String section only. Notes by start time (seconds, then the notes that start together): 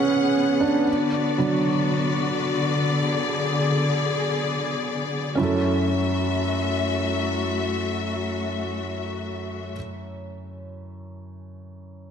Already playing: B3 G#4 F#5
0.87 D3 F#4 D5
2.98 G#4
5.38 A3 F#4 E5